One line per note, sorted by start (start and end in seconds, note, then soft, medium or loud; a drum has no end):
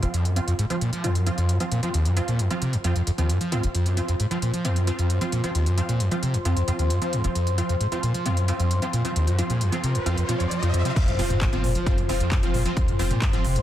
0.00 0.06 F1 loud
0.00 0.13 F3 medium
0.00 0.13 C4 medium
0.00 13.62 F4 medium
0.00 0.13 F4 medium
0.00 13.62 C5 medium
0.00 13.62 C6 medium
0.00 closed hi-hat medium
0.14 0.26 F2 loud
0.14 closed hi-hat medium
0.25 0.38 F#2 medium
0.25 closed hi-hat medium
0.36 0.40 F2 loud
0.36 0.53 F3 medium
0.36 0.53 C4 medium
0.36 0.53 F4 medium
0.36 closed hi-hat medium
0.47 0.54 F2 medium
0.47 closed hi-hat medium
0.59 0.65 G#2 loud
0.59 closed hi-hat medium
0.70 0.76 F3 medium
0.70 0.80 F3 medium
0.70 0.80 C4 medium
0.70 0.80 F4 loud
0.70 closed hi-hat medium
0.81 0.91 A#2 loud
0.81 closed hi-hat medium
0.93 1.05 F3 loud
0.93 closed hi-hat medium
1.04 1.17 F2 medium
1.04 1.14 F3 medium
1.04 1.14 C4 medium
1.04 1.14 F4 loud
1.04 closed hi-hat medium
1.15 1.28 F#2 medium
1.15 closed hi-hat medium
1.26 1.30 F2 loud
1.26 1.58 F3 medium
1.26 1.58 C4 medium
1.26 1.58 F4 loud
1.26 closed hi-hat medium
1.38 1.51 F2 medium
1.38 closed hi-hat soft
1.49 1.58 F#2 medium
1.49 closed hi-hat medium
1.60 1.64 F3 medium
1.60 1.80 F3 medium
1.60 1.80 C4 medium
1.60 1.80 F4 medium
1.60 closed hi-hat medium
1.71 1.81 A#2 medium
1.71 closed hi-hat medium
1.83 1.89 F3 loud
1.83 1.93 F3 medium
1.83 1.93 C4 medium
1.83 1.93 F4 medium
1.83 closed hi-hat medium
1.94 2.07 D#2 medium
1.94 closed hi-hat medium
2.05 2.18 F#2 medium
2.05 closed hi-hat medium
2.17 2.20 F2 loud
2.17 2.33 F3 medium
2.17 2.33 C4 medium
2.17 2.33 F4 medium
2.17 closed hi-hat medium
2.28 2.41 A#2 medium
2.28 closed hi-hat medium
2.39 2.49 F#2 medium
2.39 closed hi-hat medium
2.51 2.61 F3 medium
2.51 2.54 F3 medium
2.51 2.61 C4 medium
2.51 2.61 F4 loud
2.51 closed hi-hat soft
2.62 2.75 C3 loud
2.62 closed hi-hat medium
2.73 2.77 F2 loud
2.73 closed hi-hat soft
2.84 2.94 F2 medium
2.84 2.95 F3 medium
2.84 2.95 C4 medium
2.84 2.95 F4 loud
2.84 closed hi-hat medium
2.96 3.02 F2 medium
2.96 closed hi-hat soft
3.07 3.11 F2 medium
3.07 closed hi-hat medium
3.18 3.31 D#2 medium
3.18 3.28 F3 medium
3.18 3.28 C4 medium
3.18 3.28 F4 medium
3.18 closed hi-hat soft
3.29 3.39 F#2 medium
3.29 closed hi-hat medium
3.41 3.54 F3 medium
3.41 closed hi-hat medium
3.52 3.61 G#2 loud
3.52 3.62 F3 medium
3.52 3.62 C4 medium
3.52 3.62 F4 loud
3.52 closed hi-hat medium
3.63 3.67 F1 loud
3.63 closed hi-hat soft
3.75 3.87 F2 loud
3.75 closed hi-hat medium
3.86 3.99 F#2 medium
3.86 closed hi-hat soft
3.97 4.01 F2 loud
3.97 4.13 F3 medium
3.97 4.13 C4 medium
3.97 4.13 F4 medium
3.97 closed hi-hat medium
4.08 4.15 F2 medium
4.08 closed hi-hat soft
4.20 4.26 G#2 loud
4.20 closed hi-hat medium
4.31 4.41 F3 medium
4.31 4.37 F3 medium
4.31 4.41 C4 medium
4.31 4.41 F4 loud
4.31 closed hi-hat soft
4.42 4.52 A#2 loud
4.42 closed hi-hat medium
4.54 4.66 F3 loud
4.54 closed hi-hat soft
4.65 4.78 F2 medium
4.65 4.75 F3 medium
4.65 4.75 C4 medium
4.65 4.75 F4 loud
4.65 closed hi-hat medium
4.76 4.89 F#2 medium
4.76 closed hi-hat soft
4.87 4.91 F2 medium
4.87 5.19 F3 medium
4.87 5.19 C4 medium
4.87 5.19 F4 loud
4.87 closed hi-hat medium
4.99 5.11 F2 medium
4.99 closed hi-hat soft
5.10 5.19 F#2 medium
5.10 closed hi-hat medium
5.21 5.41 F3 medium
5.21 5.25 F3 medium
5.21 5.41 C4 medium
5.21 5.41 F4 medium
5.21 closed hi-hat medium
5.32 5.42 A#2 loud
5.32 closed hi-hat medium
5.44 5.50 F3 loud
5.44 5.54 F3 medium
5.44 5.54 C4 medium
5.44 5.54 F4 medium
5.44 closed hi-hat soft
5.55 5.68 D#2 medium
5.55 closed hi-hat medium
5.66 5.79 F#2 medium
5.66 closed hi-hat soft
5.78 5.81 F2 loud
5.78 5.94 F3 medium
5.78 5.94 C4 medium
5.78 5.94 F4 medium
5.78 closed hi-hat medium
5.89 6.01 A#2 medium
5.89 closed hi-hat medium
6.00 6.09 F#2 medium
6.00 closed hi-hat medium
6.11 6.15 F3 medium
6.11 6.22 F3 medium
6.11 6.22 C4 medium
6.11 6.22 F4 medium
6.11 closed hi-hat soft
6.23 6.35 C3 loud
6.23 closed hi-hat medium
6.34 6.38 F2 medium
6.34 closed hi-hat soft
6.45 6.55 F2 medium
6.45 6.55 F3 medium
6.45 6.55 C4 medium
6.45 6.55 F4 loud
6.45 closed hi-hat medium
6.56 6.63 F2 medium
6.56 closed hi-hat soft
6.68 6.71 F2 loud
6.68 6.99 F3 medium
6.68 6.99 C4 medium
6.68 6.99 F4 loud
6.68 closed hi-hat medium
6.79 6.92 D#2 medium
6.79 closed hi-hat soft
6.90 7.00 F#2 medium
6.90 closed hi-hat medium
7.01 7.14 F3 medium
7.01 7.22 F3 medium
7.01 7.22 C4 medium
7.01 7.22 F4 medium
7.01 closed hi-hat soft
7.13 7.22 G#2 loud
7.13 closed hi-hat medium
7.24 7.28 F1 loud
7.24 7.34 F3 medium
7.24 7.34 C4 medium
7.24 7.34 F4 medium
7.24 closed hi-hat soft
7.35 7.48 F2 loud
7.35 closed hi-hat medium
7.35 riser medium
7.47 7.59 F#2 medium
7.47 closed hi-hat medium
7.58 7.62 F2 loud
7.58 7.74 F3 medium
7.58 7.74 C4 medium
7.58 7.74 F4 medium
7.58 closed hi-hat medium
7.69 7.75 F2 medium
7.69 closed hi-hat medium
7.80 7.87 G#2 loud
7.80 closed hi-hat medium
7.92 7.98 F3 medium
7.92 8.02 F3 medium
7.92 8.02 C4 medium
7.92 8.02 F4 loud
7.92 closed hi-hat soft
8.03 8.12 A#2 loud
8.03 closed hi-hat medium
8.14 8.27 F3 loud
8.14 closed hi-hat soft
8.26 8.38 F2 medium
8.26 8.36 F3 medium
8.26 8.36 C4 medium
8.26 8.36 F4 loud
8.26 closed hi-hat medium
8.37 8.50 F#2 medium
8.37 closed hi-hat soft
8.48 8.52 F2 loud
8.48 8.79 F3 loud
8.48 8.79 C4 medium
8.48 8.79 F4 loud
8.48 closed hi-hat medium
8.60 8.72 F2 medium
8.60 closed hi-hat soft
8.71 8.80 F#2 medium
8.71 closed hi-hat medium
8.82 8.86 F3 medium
8.82 9.02 F3 medium
8.82 9.02 C4 medium
8.82 9.02 F4 medium
8.82 closed hi-hat soft
8.93 9.03 A#2 loud
8.93 closed hi-hat medium
9.05 9.11 F3 loud
9.05 9.15 F3 medium
9.05 9.15 C4 medium
9.05 9.15 F4 medium
9.05 closed hi-hat medium
9.16 9.29 D#2 medium
9.16 closed hi-hat medium
9.27 9.40 F#2 medium
9.27 closed hi-hat medium
9.38 9.42 F2 loud
9.38 9.55 F3 medium
9.38 9.55 C4 medium
9.38 9.55 F4 medium
9.38 closed hi-hat medium
9.50 9.63 A#2 loud
9.50 closed hi-hat medium
9.61 9.70 F#2 medium
9.61 closed hi-hat medium
9.72 9.76 F3 medium
9.72 9.82 F3 medium
9.72 9.82 C4 medium
9.72 9.82 F4 loud
9.72 closed hi-hat medium
9.84 9.96 C3 loud
9.84 closed hi-hat medium
9.95 9.99 F2 loud
9.95 closed hi-hat medium
10.06 10.15 F2 medium
10.06 10.16 F3 medium
10.06 10.16 C4 medium
10.06 10.16 F4 loud
10.06 closed hi-hat medium
10.17 10.24 F2 medium
10.17 closed hi-hat medium
10.29 10.35 A#2 loud
10.29 10.60 F3 medium
10.29 10.60 C4 medium
10.29 10.60 F4 loud
10.29 closed hi-hat medium
10.40 10.46 F2 loud
10.40 closed hi-hat soft
10.51 10.61 F3 loud
10.51 closed hi-hat medium
10.63 10.72 F2 loud
10.63 10.82 F3 medium
10.63 10.82 C4 medium
10.63 10.82 F4 medium
10.63 closed hi-hat medium
10.74 10.83 F2 loud
10.74 closed hi-hat medium
10.85 10.91 C3 loud
10.85 10.95 F3 medium
10.85 10.95 C4 medium
10.85 10.95 F4 medium
10.85 closed hi-hat medium
10.96 11.09 F2 loud
10.96 kick loud
10.96 closed hi-hat medium
10.96 crash loud
10.96 impact medium
11.08 11.18 F1 medium
11.08 11.20 F#2 medium
11.08 closed hi-hat medium
11.08 mid tom medium
11.19 11.30 F1 loud
11.19 11.23 F2 loud
11.19 11.35 F3 medium
11.19 11.35 C4 medium
11.19 11.35 F4 loud
11.19 open hi-hat loud
11.30 11.36 F2 medium
11.30 closed hi-hat medium
11.30 mid tom medium
11.41 11.48 G#2 loud
11.41 kick loud
11.41 clap loud
11.41 closed hi-hat medium
11.53 11.63 F1 medium
11.53 11.59 F3 medium
11.53 11.63 F3 medium
11.53 11.63 C4 medium
11.53 11.63 F4 loud
11.53 closed hi-hat medium
11.53 mid tom medium
11.64 11.75 F1 loud
11.64 11.73 A#2 loud
11.64 open hi-hat medium
11.75 11.88 F3 loud
11.75 closed hi-hat medium
11.86 11.99 F2 medium
11.86 11.97 F3 loud
11.86 11.97 C4 medium
11.86 11.97 F4 loud
11.86 kick loud
11.86 closed hi-hat medium
11.98 12.09 F1 medium
11.98 12.11 F#2 medium
11.98 closed hi-hat medium
12.09 12.20 F1 loud
12.09 12.13 F2 loud
12.09 12.40 F3 medium
12.09 12.40 C4 medium
12.09 12.40 F4 loud
12.09 open hi-hat loud
12.20 12.33 F2 medium
12.20 closed hi-hat medium
12.32 12.41 F#2 medium
12.32 kick loud
12.32 clap loud
12.32 closed hi-hat medium
12.43 12.54 F1 medium
12.43 12.63 F3 medium
12.43 12.47 F3 medium
12.43 12.63 C4 medium
12.43 12.63 F4 medium
12.43 closed hi-hat medium
12.54 12.65 F1 loud
12.54 12.64 A#2 loud
12.54 open hi-hat medium
12.65 12.72 F3 loud
12.65 12.76 F3 medium
12.65 12.76 C4 medium
12.65 12.76 F4 medium
12.65 closed hi-hat medium
12.77 12.90 D#2 medium
12.77 kick loud
12.77 closed hi-hat medium
12.88 12.99 F1 medium
12.88 13.01 F#2 medium
12.88 closed hi-hat medium
12.88 mid tom medium
12.99 13.10 F1 loud
12.99 13.03 F2 loud
12.99 13.16 F3 medium
12.99 13.16 C4 medium
12.99 13.16 F4 loud
12.99 open hi-hat loud
13.11 13.23 A#2 loud
13.11 closed hi-hat medium
13.11 mid tom medium
13.22 13.31 F#2 medium
13.22 kick loud
13.22 clap loud
13.22 closed hi-hat medium
13.33 13.44 F1 medium
13.33 13.43 F3 medium
13.33 13.37 F3 medium
13.33 13.43 C4 medium
13.33 13.43 F4 loud
13.33 closed hi-hat medium
13.33 mid tom medium
13.44 13.56 F1 loud
13.44 13.57 C3 loud
13.44 open hi-hat medium
13.56 13.59 F2 loud
13.56 closed hi-hat medium